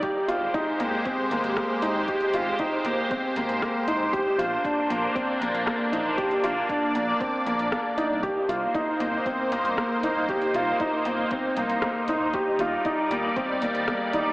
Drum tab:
HH |x-x-x-x-x-xxx-x-|xxx-x-x-x-xxx-x-|x-x-x-x-x-xxx-x-|xxx-x-x-x-xxx-x-|
SD |------------r---|------------r---|------------r---|------------r---|
BD |o---o---o---o---|o---o---o---o---|o---o---o---o---|o---o---o---o---|

HH |x-x-x-x-x-xxx-x-|xxx-x-x-x-xxx-x-|x-x-x-x-x-xxx-x-|
SD |------------r---|------------r---|------------r---|
BD |o---o---o---o---|o---o---o---o---|o---o---o---o---|